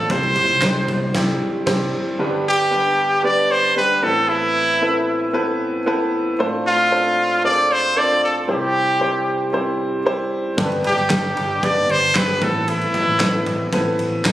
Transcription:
Already playing: A2 A3 C4 D4 F4 A4 C5
0.10 C2 C3 G3 C4 E4 G4 C5, kick, ride
0.23 ride
0.35 floor tom, ride
0.49 C2
0.62 C2 G3 C4 E4 G4 C5, kick, snare, clap, ride
0.88 C2, floor tom, ride
1.14 C2 G3 C4 E4 G4, kick, snare, crash
1.66 C2 G3 C4 E4 G4 C5, kick, snare, crash
2.19 G2 D3 G3 B3 D4 G4 B4
2.48 G4
2.70 G3 B3 D4 G4 B4
3.23 G3 B3 D4 G4 B4 D5
3.51 C5
3.76 G3 B3 D4 G4 B4
4.02 A2 E3 B3 C4 E4 A4 B4
4.29 E4
4.81 B3 C4 E4 A4 B4
5.33 B3 C4 E4 A4 B4
5.86 B3 C4 E4 A4 B4
6.39 A2 A3 C4 D4 F4 A4 C5
6.66 F4
6.91 C4 D4 F4 A4 C5
7.44 C4 D4 F4 G#4 C5 D5
7.51 A4
7.72 C5
7.96 C4 D4 F4 A4 C5 D5
8.24 A4
8.47 C3 G3 C4 E4 G4 C5
9.00 G3 C4 E4 G4 C5
9.53 G3 C4 E4 G4 C5
10.05 G3 C4 E4 G4 C5
10.57 G1 G2 D3 G3 B3 D4 G4 A4, kick, ride
10.65 B4
10.72 ride
10.84 G4, floor tom, ride
10.97 G1, ride
11.10 G1 G3 B3 D4 G4 B4, kick, snare, clap, ride
11.37 G1, floor tom, ride
11.62 G1 G3 B3 D4 G4 B4 D5, kick, ride
11.89 G1 C5, ride
12.15 G1 G3 B3 D4 G4 B4, kick, snare, clap, ride
12.29 floor tom
12.41 A1 A2 E3 B3 C4 E4 A4 B4, kick, floor tom, ride
12.68 E4, ride
12.81 ride
12.94 floor tom, ride
13.07 A1
13.20 A1 B3 C4 E4 A4 B4, kick, snare, clap, ride
13.46 A1, floor tom, ride
13.72 A1 B3 C4 E4 A4 B4, kick, ride
13.99 A1, ride
14.25 A1 A4, kick, snare, clap, ride

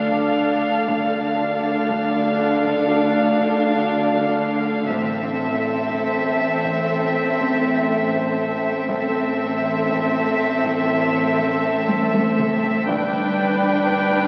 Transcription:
Already playing: D2 D3 D4 A4 F5 F6 A6
0.12 taiko
0.88 D2 D3 D4 A4 F5, taiko
1.89 taiko
2.65 taiko
3.41 taiko
4.16 taiko
4.90 A1 A2 C4 A4 E5, taiko
5.89 taiko
6.65 taiko
7.40 taiko
8.15 taiko
8.89 A1 A2 C4 A4 E5, taiko
9.89 taiko
10.64 taiko
11.39 taiko
11.88 taiko high
12.14 taiko high
12.39 taiko mid
12.64 taiko low
12.87 G1 G2 D4 B4 G5 B5, taiko
13.89 F6, taiko

